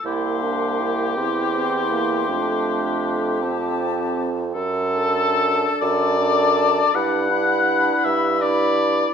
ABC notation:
X:1
M:12/8
L:1/8
Q:3/8=53
K:Fmix
V:1 name="Flute"
c'3 c'6 a3 | [K:D] z a3 a2 b b3 b2 |]
V:2 name="Oboe"
G8- G3 z | [K:D] A3 d3 f3 e d2 |]
V:3 name="Clarinet"
=E D E E3 D3 C3 | [K:D] z A3 A2 E E3 E2 |]
V:4 name="French horn"
B,3 C C B, A,3 C3 | [K:D] z D3 D2 D D3 D2 |]
V:5 name="Bassoon" clef=bass
C,,3 =E,,3 F,,6 | [K:D] F,,3 F,,3 G,,3 G,,3 |]